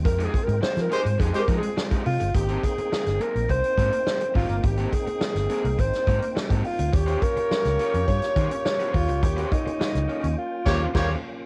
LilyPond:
<<
  \new Staff \with { instrumentName = "Alto saxophone" } { \time 4/4 \key aes \major \tempo 4 = 104 \tuplet 3/2 { bes'8 aes'8 bes'8 c''8 bes'8 c''8 aes'8 bes'8 aes'8 } r8 f'8 | g'8 aes'4 bes'8 c''4. f'8 | g'8 aes'4. c''4 r8 f'8 | g'8 bes'4. des''4 des''8 f'8 |
g'8 ees'4. f'4. r8 | }
  \new Staff \with { instrumentName = "Horn section" } { \time 4/4 \key aes \major r4. <aes g' c''>16 r8 <aes g' c''>16 r4. | r1 | r1 | <bes g' des''>1~ |
<bes g' des''>2 r8 <bes g' des''>8 <bes g' des''>8 r8 | }
  \new Staff \with { instrumentName = "Overdriven electric guitar" } { \time 4/4 \key aes \major r16 <aes ees' g'>16 r4 <aes ees' aes'>16 r16 <aes ees' g'>16 r16 <aes ees' g'>16 r8 <aes ees' g'>16 r8 | r16 <bes c' g'>16 r4 <bes c' aes'>16 r8. <bes c' g'>16 r8. <bes c' g'>16 r16 | r16 <bes c' g'>16 r4 <bes c' aes'>16 r8. <bes c' g'>16 r8 <bes c' g'>16 r8 | r16 <des' g' c''>16 r4 <des' g' des''>16 r8. <des' g' c''>16 r8 <des' g' c''>16 r8 |
r16 <des' g' c''>16 r4 <des' g' des''>16 r8. <des' g' c''>8 <des' g' c''>8 r8 | }
  \new Staff \with { instrumentName = "Tonewheel organ" } { \time 4/4 \key aes \major << { g''1 | g''1~ | g''1~ | g''1~ |
g''1 | } \\ { <aes c' f'>1 | <bes c' ees'>1~ | <bes c' ees'>1 | <bes des' f'>1~ |
<bes des' f'>1 | } >> }
  \new Staff \with { instrumentName = "Fingered electric bass" } { \clef bass \time 4/4 \key aes \major f,8 r16 aes,16 r16 f16 r16 aes,16 f,16 r16 f16 r8. c16 g,,16 | aes,,8 r8. g,,16 r16 bes,,16 c,16 r16 aes,16 r8. aes,,16 g,,16 | aes,,8 r8. g,,16 r16 c,16 aes,,16 r16 aes,16 r8 aes,16 r16 d,16 | ees,8 r8. des,16 r16 f,16 g,16 r16 ees16 r8. ees,16 des,16 |
ees,8 r8. des,16 r16 ees,16 r8 ees,8 ees,8 r8 | }
  \new DrumStaff \with { instrumentName = "Drums" } \drummode { \time 4/4 <hh bd>16 hh16 <hh bd>16 hh16 sn16 <hh sn>16 hh16 hh16 <hh bd>16 <hh sn>16 <hh bd>16 hh16 sn16 <hh bd>16 hho16 hh16 | <hh bd>16 hh16 <hh bd>16 hh16 sn16 <hh sn>16 hh16 hh16 <hh bd>16 hh16 <hh bd>16 hh16 sn16 hh16 <hho bd>16 hh16 | <hh bd>16 hh16 <hh bd>16 hh16 sn16 <hh sn>16 hh16 hh16 <hh bd>16 <hh sn>16 <hh bd>16 hh16 sn16 <hh bd>16 hho16 hh16 | <hh bd>16 hh16 <hh bd>16 hh16 sn16 <hh sn>16 hh16 hh16 <hh bd>16 <hh sn>16 <hh bd>16 hh16 sn16 hh16 <hho bd>16 hh16 |
<hh bd>16 hh16 <hh bd>16 hh16 sn16 <hh sn>16 hh16 hh16 r8 <cymc bd sn>8 <cymc bd sn>4 | }
>>